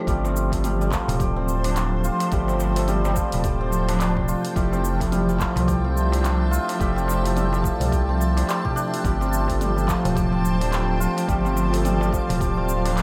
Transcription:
Already playing: F3 C4 D4 F4 G4
0.07 G1 F3 G3 A3 C4 G4 C5 G5 A5, kick, open hi-hat, cabasa
0.25 C4, darbuka ka, cabasa
0.36 cabasa
0.50 F3 A3 C4 A4, kick, open hi-hat, darbuka ka, cabasa
0.64 G3, mid tom, open hi-hat, cabasa
0.81 G3, cabasa
0.92 F3, kick, clap, cabasa
1.08 D1, open hi-hat, darbuka ka, darbuka dum, cabasa
1.19 G4, kick, open hi-hat, darbuka tek, darbuka dum, cabasa
1.36 C4
1.48 cabasa
1.64 D4, open hi-hat, darbuka tek, cabasa
1.76 D4, clap, open hi-hat, cabasa
2.04 F4, cabasa
2.20 open hi-hat, darbuka tek, cabasa
2.31 G1 F3 G3 A3 C4 G4, kick, open hi-hat, cabasa
2.48 C4, darbuka ka, cabasa
2.60 darbuka tek, cabasa
2.75 F3 A3 C4, open hi-hat, darbuka ka, cabasa
2.79 A4
2.88 G3, mid tom, open hi-hat, cabasa
3.05 G3, darbuka ka, darbuka tek, cabasa
3.16 F3, kick, cabasa
3.32 D1, open hi-hat, darbuka ka, darbuka dum, cabasa
3.44 G4, kick, open hi-hat, cabasa
3.61 C4
3.72 darbuka tek, cabasa
3.88 D4, open hi-hat, darbuka tek, cabasa
4.00 D4, clap, open hi-hat, cabasa
4.17 kick, darbuka dum
4.28 F4, cabasa
4.45 open hi-hat, cabasa
4.55 F1 F3 G3 A3 E4 G4 E5, kick, open hi-hat, cabasa
4.72 C4, darbuka ka, cabasa
4.85 cabasa
4.99 F3 A3 E4, kick, open hi-hat, darbuka ka, cabasa
5.03 A4
5.12 G3, mid tom, open hi-hat, cabasa
5.29 G3, cabasa
5.40 F3, kick, clap, cabasa
5.56 C2, open hi-hat, darbuka ka, darbuka dum, cabasa
5.68 G4, kick, open hi-hat, darbuka tek, darbuka dum, cabasa
5.84 C4
5.97 cabasa
6.12 D4, open hi-hat, darbuka tek, cabasa
6.24 D4, clap, open hi-hat, cabasa
6.51 F4, cabasa
6.69 open hi-hat, darbuka tek, cabasa
6.79 F1 F3 G3 A3 G4 E5, kick, open hi-hat, cabasa
6.96 C4, darbuka ka, cabasa
7.08 darbuka tek, cabasa
7.23 F3 A3 E4, open hi-hat, darbuka ka, cabasa
7.27 A4
7.36 G3, mid tom, open hi-hat, cabasa
7.53 G3, darbuka ka, darbuka tek, cabasa
7.64 F3, kick, cabasa
7.80 C2, open hi-hat, darbuka ka, darbuka dum, cabasa
7.92 G4, kick, open hi-hat, cabasa
8.09 C4
8.20 darbuka tek, cabasa
8.37 C2 D4, open hi-hat, darbuka tek, cabasa
8.48 G3, clap, open hi-hat, cabasa
8.65 G4, kick, darbuka dum
8.76 D4, cabasa
8.94 open hi-hat, cabasa
9.04 G1 F3 G3 A3 C4 G4 C5 G5, kick, open hi-hat, cabasa
9.21 C4, darbuka ka, cabasa
9.33 cabasa
9.46 F3 A3 C4, kick, open hi-hat, darbuka ka, cabasa
9.51 A4
9.61 G3, mid tom, open hi-hat, cabasa
9.76 G3, cabasa
9.88 F3, kick, clap, cabasa
10.05 D1, open hi-hat, darbuka ka, darbuka dum, cabasa
10.15 G4, kick, open hi-hat, darbuka tek, darbuka dum, cabasa
10.32 C4
10.45 cabasa
10.61 D4, open hi-hat, darbuka tek, cabasa
10.72 D4, clap, open hi-hat, cabasa
11.00 F4, cabasa
11.17 open hi-hat, darbuka tek, cabasa
11.28 G1 F3 G3 A3 C4 G4 F5, kick, open hi-hat, cabasa
11.45 C4, darbuka ka, cabasa
11.57 darbuka tek, cabasa
11.71 F3 A3 C4, open hi-hat, darbuka ka, cabasa
11.75 A4
11.84 G3, mid tom, open hi-hat, cabasa
12.01 G3, darbuka ka, darbuka tek, cabasa
12.13 F3, kick, cabasa
12.29 D1, open hi-hat, darbuka ka, darbuka dum, cabasa
12.41 G4, kick, open hi-hat, cabasa
12.57 C4
12.68 darbuka tek, cabasa
12.85 D4, open hi-hat, darbuka tek, cabasa
12.97 D4, clap, open hi-hat, cabasa

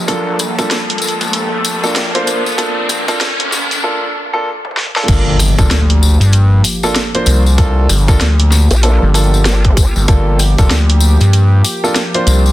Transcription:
Already playing: F3 A#3, riser
0.08 G1 A#3 D4 F4 A4, kick, closed hi-hat, tambourine
0.27 A#1
0.39 cross-stick, closed hi-hat, tambourine
0.59 A#3 D4 F4 A4, kick, closed hi-hat, tambourine
0.71 snare, closed hi-hat, tambourine
0.90 closed hi-hat
0.98 closed hi-hat, tambourine
1.08 closed hi-hat
1.21 G1, closed hi-hat, tambourine
1.33 closed hi-hat, tambourine
1.52 F1
1.64 F1, closed hi-hat, tambourine
1.83 A#3 D4 F4 A4, tambourine
1.95 snare, closed hi-hat, tambourine
2.15 D2 A#3 D4 F4 C5, closed hi-hat
2.27 closed hi-hat, tambourine
2.46 tambourine
2.58 A#3 D4 F4 A4, kick, closed hi-hat, tambourine
2.89 G2, cross-stick, closed hi-hat, tambourine
3.08 A#3 D4 F4 A4, kick, closed hi-hat, tambourine
3.20 snare, closed hi-hat, tambourine
3.39 F1, closed hi-hat
3.52 snare, tambourine
3.71 G1, closed hi-hat, tambourine
3.83 A#3 D4 F4 A4
4.33 A#3 D4 F4 A4
4.65 high tom
4.71 high tom
4.77 snare, high tom
4.86 high tom
4.96 A#3 D4 F4 A4, snare
5.08 G1 F3 A#3 D4 F4 G4 A4, kick, closed hi-hat, tambourine, crash, impact
5.39 cross-stick, open hi-hat, tambourine
5.58 F1 A#3 D4 F4 A4, kick, closed hi-hat, tambourine
5.70 D2, snare, closed hi-hat, tambourine
5.90 closed hi-hat
6.03 tambourine
6.20 G2, closed hi-hat, tambourine
6.32 closed hi-hat, tambourine
6.64 open hi-hat, tambourine
6.83 A#3 D4 F4 A4, tambourine
6.95 snare, closed hi-hat, tambourine
7.15 A#3 D4 F4 C5, closed hi-hat
7.26 C2, closed hi-hat, tambourine
7.46 tambourine
7.58 A#3 D4 F4 A4, kick, closed hi-hat, tambourine
7.89 G1, cross-stick, open hi-hat, tambourine
8.08 A#3 D4 F4 A4, kick, closed hi-hat, tambourine
8.21 D2, snare, closed hi-hat, tambourine
8.40 closed hi-hat
8.52 snare, tambourine
8.71 A#1, closed hi-hat, tambourine
8.83 A#3 D4 F4 A4, closed hi-hat, tambourine
9.02 G1
9.14 A#3 D4 F4 A4, cross-stick, open hi-hat, tambourine
9.34 tambourine
9.45 G1, snare, closed hi-hat, tambourine
9.65 kick, closed hi-hat
9.77 kick, closed hi-hat, tambourine
9.96 G1, tambourine
10.08 G1 A#3 D4 F4 A4, kick, closed hi-hat, tambourine
10.39 cross-stick, open hi-hat, tambourine
10.58 F1 A#3 D4 F4 A4, kick, closed hi-hat, tambourine
10.70 D2, snare, closed hi-hat, tambourine
10.90 closed hi-hat
11.01 tambourine
11.20 G2, closed hi-hat, tambourine
11.33 closed hi-hat, tambourine
11.64 open hi-hat, tambourine
11.84 A#3 D4 F4 A4, tambourine
11.96 snare, closed hi-hat, tambourine
12.14 A#3 D4 F4 C5, closed hi-hat
12.26 C2, closed hi-hat, tambourine
12.46 tambourine

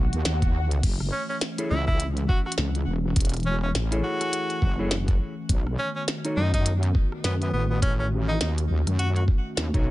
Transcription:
Already playing: B1 D#3 A3 B3 F#4, swell
0.13 D#2, closed hi-hat
0.25 D#2, snare, closed hi-hat
0.42 kick, closed hi-hat
0.71 closed hi-hat
0.82 F#1 E3 C#4, kick, closed hi-hat, crash
1.00 cross-stick
1.12 C#4
1.29 C#4
1.41 snare, closed hi-hat
1.58 E4 G#4 A4 C#5, closed hi-hat
1.70 C#2 E4
1.87 E4, kick, cross-stick
2.00 closed hi-hat
2.17 closed hi-hat
2.28 F#4, kick
2.46 F#4, cross-stick
2.52 closed hi-hat
2.58 C#2, snare
2.75 closed hi-hat
2.87 E1
3.16 E1 G#5, kick, closed hi-hat
3.21 closed hi-hat
3.25 closed hi-hat
3.29 closed hi-hat
3.34 cross-stick, closed hi-hat
3.37 closed hi-hat
3.40 closed hi-hat
3.43 C#4, closed hi-hat
3.63 C#4
3.75 A1, snare, closed hi-hat
3.91 E4 G#4 A4 C#5, closed hi-hat
4.04 F#4
4.21 cross-stick, closed hi-hat
4.33 closed hi-hat
4.50 closed hi-hat
4.62 F#1, kick
4.79 E4 G#4 A4 C#5
4.91 snare, closed hi-hat
5.08 kick, closed hi-hat
5.49 B1 D#3 A3 B3 F#4, kick, closed hi-hat
5.67 cross-stick
5.79 C#4
5.96 C#4
6.08 snare, closed hi-hat
6.25 D#4 F#4 A4 C#5, closed hi-hat
6.37 F#2 D#4
6.53 D#4, kick, cross-stick, closed hi-hat
6.66 closed hi-hat
6.83 closed hi-hat
6.95 kick
7.12 cross-stick
7.24 F#2 B3, snare, closed hi-hat
7.42 B3, closed hi-hat
7.53 A1 B3
7.70 B3
7.82 A1 C#4, kick, closed hi-hat
7.99 C#4, cross-stick
8.29 D#4
8.41 D#2 D#4, snare, closed hi-hat
8.58 closed hi-hat
8.70 D#2
8.87 F#2, cross-stick, closed hi-hat
8.99 F#4, closed hi-hat
9.16 F#4, closed hi-hat
9.28 kick
9.57 D#2, snare, closed hi-hat
9.74 B1 D#4 F#4 A4 C#5, kick, closed hi-hat

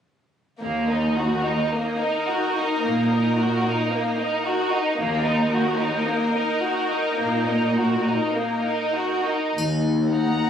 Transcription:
0.61 D#2 A#3 D#4 A#4
0.90 D#4
1.17 F#4
1.46 D#4
1.73 A#3
2.00 D#4
2.29 F#4
2.57 D#4
2.83 A#2 A#3
3.10 D#4
3.38 F#4
3.66 D#4
3.92 A#3
4.19 D#4
4.45 F#4
4.72 D#4
4.98 D#2 A#3 D#4 A#4
5.25 D#4
5.53 F#4
5.80 D#4
6.07 A#3
6.35 D#4
6.63 F#4
6.90 D#4
7.18 A#2 A#3
7.47 D#4
7.76 F#4
8.04 D#4
8.34 A#3
8.65 D#4
8.95 F#4
9.25 D#4
9.56 D#2 D#4, triangle
10.11 D#4 F#5 A#5

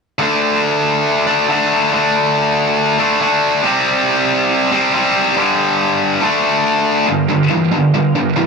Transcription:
0.19 D3 A3 D4
1.27 D3 A3 D4
1.49 D3 A3 D4
1.92 D3 A3 D4
2.99 D3 A3 D4
3.19 D3 A3 D4
3.62 C3 G3 C4
4.71 C3 G3 C4
4.92 C3 G3 C4
5.35 G2 D3 G3
6.21 D3 A3 D4
7.07 G2 D3 F4 A#4
7.12 B3 G4
7.30 G2 D3
7.50 G2 E3
7.72 G2 D3
7.94 G2 D3
8.15 G2 D3
8.36 G2 E3

